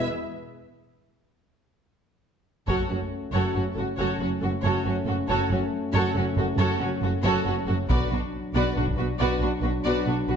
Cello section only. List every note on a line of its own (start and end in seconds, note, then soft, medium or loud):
2.67 2.75 F#2 soft
2.90 2.98 F#2 soft
3.33 3.41 F#2 soft
3.55 3.63 F#2 soft
3.77 3.85 F#2 soft
3.99 4.07 F#2 soft
4.20 4.28 F#2 soft
4.42 4.50 F#2 soft
4.64 4.72 F#2 soft
4.85 4.93 F#2 soft
5.07 5.15 F#2 soft
5.28 5.36 F#2 soft
5.49 5.57 F#2 soft
5.94 6.02 F#2 medium
6.15 6.23 F#2 soft
6.36 6.44 F#2 soft
6.58 6.66 F#2 medium
6.80 6.88 F#2 soft
7.02 7.10 F#2 soft
7.24 7.32 F#2 medium
7.47 7.55 F#2 soft
7.69 7.77 F#2 soft
7.90 7.98 B2 medium
8.12 8.20 B2 soft
8.55 8.63 B2 medium
8.77 8.85 B2 soft
8.99 9.07 B2 soft
9.21 9.29 B2 medium
9.43 9.51 B2 soft
9.64 9.72 B2 soft
9.85 9.93 B2 soft
10.07 10.15 B2 soft
10.29 10.36 B2 soft